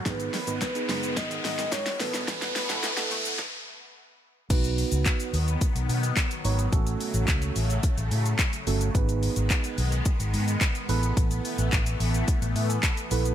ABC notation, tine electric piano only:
X:1
M:4/4
L:1/16
Q:1/4=108
K:Alyd
V:1 name="Tine electric piano"
[B,DG]2 z [B,DB]2 [B,DG]6 z3 [B,EA]2- | [B,EA]2 z [B,EA]2 [B,EA]3 z8 | [B,DFB]6 z8 [B,DFc]2 | [A,CFA]6 z8 [A,CFA]2 |
[B,DGB]6 z8 [B,EAB]2- | [B,EAB]4 z6 e g z2 [B,EABb]2 |]